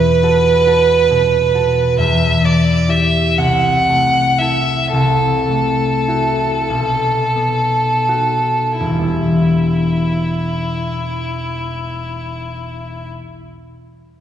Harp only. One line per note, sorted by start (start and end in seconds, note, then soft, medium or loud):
0.00 1.97 E2 soft
0.00 2.03 D#4 soft
0.00 2.81 B4 soft
0.23 0.66 F#4 soft
0.23 0.66 A4 soft
0.67 1.53 F#4 soft
0.67 1.54 A4 soft
1.10 2.02 B2 soft
1.55 2.02 F#4 soft
1.55 2.03 A4 soft
1.98 3.42 E2 soft
2.42 3.41 B3 soft
2.88 4.40 E4 soft
2.88 3.42 G4 soft
3.38 4.91 C2 soft
3.89 5.47 A3 soft
4.41 6.07 E4 soft
4.41 8.31 A4 soft
4.93 6.74 C2 soft
5.48 8.85 A3 soft
6.08 6.75 E4 soft
6.08 8.07 F#4 soft
6.70 8.84 B1 soft
7.36 8.98 B3 soft
8.08 8.86 D#4 soft
8.08 8.86 F#4 soft
8.80 13.12 E1 soft
8.85 13.17 B1 soft
8.90 13.22 E3 soft
8.95 13.27 G3 soft
8.99 13.31 B3 soft
9.04 13.36 E4 soft